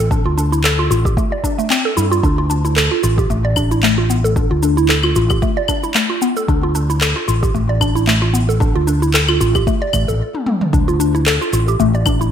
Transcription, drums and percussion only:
0.11 kick, shaker
0.38 shaker
0.53 shaker
0.64 clap, shaker
0.91 shaker
1.05 kick, shaker
1.17 kick, shaker
1.44 kick, shaker
1.59 shaker
1.70 clap, shaker
1.97 shaker
2.12 shaker
2.23 kick, shaker
2.50 shaker
2.65 shaker
2.76 clap, shaker
3.03 shaker
3.18 kick, shaker
3.30 shaker
3.56 kick, claves, shaker
3.71 shaker
3.83 clap, shaker
4.10 shaker
4.25 shaker
4.36 kick, shaker
4.63 shaker
4.78 shaker
4.89 clap, shaker
5.03 claves
5.16 shaker
5.30 kick, claves, shaker
5.42 kick, shaker
5.68 kick, claves, shaker
5.84 shaker
5.94 clap, shaker
6.22 shaker
6.37 shaker
6.48 kick, shaker
6.75 shaker
6.90 shaker
7.01 clap, shaker
7.28 shaker
7.43 kick, shaker
7.55 shaker
7.81 kick, claves, shaker
7.96 shaker
8.07 clap, shaker
8.34 shaker
8.50 shaker
8.61 kick, shaker
8.88 shaker
9.03 shaker
9.14 clap, shaker
9.28 claves
9.41 shaker
9.55 kick, claves, shaker
9.67 kick, shaker
9.93 kick, claves, shaker
10.09 shaker
10.35 high tom
10.46 mid tom
10.61 mid tom
10.73 kick, shaker
10.89 shaker
11.00 shaker
11.15 shaker
11.26 clap, shaker
11.42 shaker
11.53 shaker
11.68 shaker
11.80 shaker
11.94 shaker
12.06 kick, claves, shaker
12.21 shaker

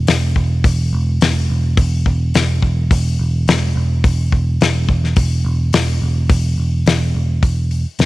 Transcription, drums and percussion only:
0.07 snare, open hi-hat
0.36 kick
0.64 kick, open hi-hat
1.21 snare, open hi-hat
1.77 kick, open hi-hat
2.06 kick
2.34 snare, open hi-hat
2.62 kick
2.91 kick, open hi-hat
3.48 snare, open hi-hat
4.04 kick, open hi-hat
4.32 kick
4.61 snare, open hi-hat
4.89 kick
5.04 snare
5.16 kick, open hi-hat
5.73 snare, open hi-hat
6.29 kick, open hi-hat
6.86 snare, open hi-hat
7.43 kick, open hi-hat
7.71 open hi-hat
7.99 snare, open hi-hat

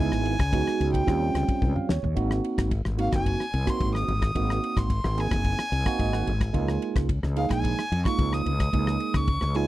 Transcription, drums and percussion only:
0.12 cross-stick
0.25 ride
0.39 kick, cross-stick, ride
0.53 kick, ride
0.67 cross-stick
0.81 ride
0.94 kick, ride
1.08 kick, cross-stick, ride
1.35 cross-stick, ride
1.48 kick, ride
1.62 kick
1.76 mid tom
1.89 snare
2.04 floor tom
2.17 kick, ride
2.31 cross-stick
2.44 ride
2.58 kick, cross-stick, ride
2.71 kick, ride
2.85 cross-stick
2.99 ride
3.12 kick, cross-stick, ride
3.26 kick, ride
3.40 cross-stick
3.53 ride
3.67 kick, cross-stick, ride
3.81 kick, ride
3.95 cross-stick
4.08 ride
4.22 kick, cross-stick, ride
4.35 kick, ride
4.50 cross-stick
4.64 ride
4.77 kick, cross-stick, ride
4.90 kick, ride
5.04 cross-stick
5.18 ride
5.31 kick, cross-stick, ride
5.44 kick, ride
5.59 cross-stick
5.73 ride
5.86 kick, cross-stick, ride
5.99 kick, ride
6.13 cross-stick
6.27 ride
6.41 kick, cross-stick, ride
6.54 kick, ride
6.68 cross-stick
6.82 ride
6.96 kick, cross-stick, ride
7.09 kick, ride
7.23 cross-stick
7.36 ride
7.50 kick, cross-stick, ride
7.64 kick, ride
7.79 cross-stick
7.92 ride
8.05 kick, cross-stick, ride
8.19 kick, ride
8.33 cross-stick
8.46 ride
8.60 kick, cross-stick, ride
8.73 kick, ride
8.87 cross-stick
9.00 ride
9.14 kick, cross-stick, ride
9.28 kick, ride
9.41 cross-stick
9.55 ride

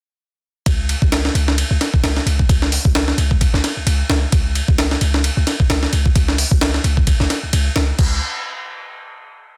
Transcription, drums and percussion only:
0.66 kick, ride
0.89 ride
1.02 kick
1.12 snare, ride
1.25 snare
1.35 ride
1.48 snare
1.58 ride
1.81 snare, ride
1.94 kick
2.04 snare, ride
2.17 snare
2.27 ride
2.39 kick
2.49 kick, ride
2.62 snare
2.72 open hi-hat
2.85 kick
2.95 snare, ride
3.08 snare
3.18 ride
3.31 kick
3.41 kick, ride
3.54 snare
3.64 snare, ride
3.87 ride
4.10 snare, ride
4.32 kick, ride
4.55 ride
4.68 kick
4.78 snare, ride
4.91 snare
5.01 ride
5.14 snare
5.24 ride
5.47 snare, ride
5.60 kick
5.70 snare, ride
5.83 snare
5.93 ride
6.06 kick
6.15 kick, ride
6.28 snare
6.38 open hi-hat
6.51 kick
6.61 snare, ride
6.74 snare
6.84 ride
6.97 kick
7.07 kick, ride
7.20 snare
7.30 snare, ride
7.53 ride
7.76 snare, ride
7.99 kick, crash

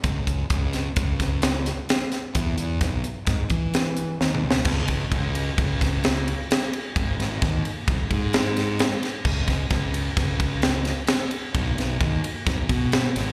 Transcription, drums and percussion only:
0.04 kick, closed hi-hat
0.27 kick, closed hi-hat
0.50 kick, closed hi-hat
0.73 snare, closed hi-hat
0.96 kick, closed hi-hat
1.20 kick, snare, closed hi-hat
1.42 snare, closed hi-hat
1.66 snare, closed hi-hat
1.89 snare, closed hi-hat
2.12 snare, closed hi-hat
2.35 kick, closed hi-hat
2.58 closed hi-hat
2.81 kick, snare, closed hi-hat
3.04 closed hi-hat
3.27 kick, snare, closed hi-hat
3.50 kick, closed hi-hat
3.74 snare, closed hi-hat
3.97 closed hi-hat
4.21 snare
4.35 mid tom
4.51 snare
4.65 kick, crash
4.88 kick, ride
5.12 kick, ride
5.35 ride
5.58 kick, ride
5.81 kick, snare, ride
6.04 snare, ride
6.28 ride
6.51 snare, ride
6.73 ride
6.96 kick, ride
7.20 snare, ride
7.42 kick, snare, ride
7.65 ride
7.88 kick, ride
8.11 kick, ride
8.33 snare, ride
8.57 snare, ride
8.79 snare, ride
9.03 snare, ride
9.25 kick, crash
9.48 kick, snare, ride
9.70 kick, snare, ride
9.94 ride
10.17 kick, snare, ride
10.40 kick, ride
10.62 snare, ride
10.85 snare, ride
11.07 snare, ride
11.31 ride
11.55 kick, ride
11.78 snare, ride
12.01 kick, ride
12.24 ride
12.47 kick, snare, ride
12.69 kick, ride
12.92 snare, ride
13.16 snare, ride

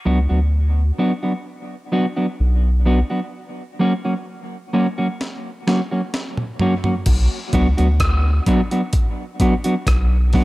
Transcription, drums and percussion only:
5.21 snare
5.68 snare
6.14 snare
6.37 mid tom
6.59 floor tom
6.84 floor tom
7.06 kick, closed hi-hat, crash
7.53 kick, closed hi-hat
7.78 closed hi-hat
8.00 kick, cross-stick, closed hi-hat
8.46 kick, closed hi-hat
8.71 closed hi-hat
8.93 kick, closed hi-hat
9.40 kick, closed hi-hat
9.64 closed hi-hat
9.87 kick, cross-stick, closed hi-hat
10.33 kick, open hi-hat

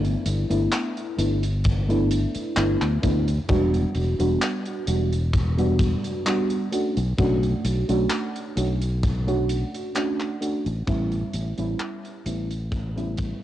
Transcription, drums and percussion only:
0.05 closed hi-hat
0.26 closed hi-hat
0.51 closed hi-hat
0.72 clap, closed hi-hat
0.97 closed hi-hat
1.19 closed hi-hat
1.43 closed hi-hat
1.64 kick, closed hi-hat
1.90 closed hi-hat
2.11 closed hi-hat
2.35 closed hi-hat
2.57 clap, closed hi-hat
2.81 clap, closed hi-hat
3.03 kick, closed hi-hat
3.28 closed hi-hat
3.49 kick, closed hi-hat
3.74 closed hi-hat
3.95 closed hi-hat
4.20 closed hi-hat
4.42 clap, closed hi-hat
4.65 closed hi-hat
4.87 closed hi-hat
5.13 closed hi-hat
5.33 kick, closed hi-hat
5.58 closed hi-hat
5.79 kick, closed hi-hat
6.04 closed hi-hat
6.26 clap, closed hi-hat
6.50 closed hi-hat
6.72 closed hi-hat
6.97 closed hi-hat
7.18 kick, closed hi-hat
7.43 closed hi-hat
7.65 closed hi-hat
7.89 closed hi-hat
8.10 clap, closed hi-hat
8.35 closed hi-hat
8.57 closed hi-hat
8.81 closed hi-hat
9.03 kick, closed hi-hat
9.28 closed hi-hat
9.49 closed hi-hat
9.75 closed hi-hat
9.95 clap, closed hi-hat
10.20 clap, closed hi-hat
10.42 closed hi-hat
10.66 closed hi-hat
10.87 kick, closed hi-hat
11.12 closed hi-hat
11.33 closed hi-hat
11.58 closed hi-hat
11.80 clap, closed hi-hat
12.05 closed hi-hat
12.26 closed hi-hat
12.51 closed hi-hat
12.72 kick, closed hi-hat
12.98 closed hi-hat
13.17 kick, closed hi-hat

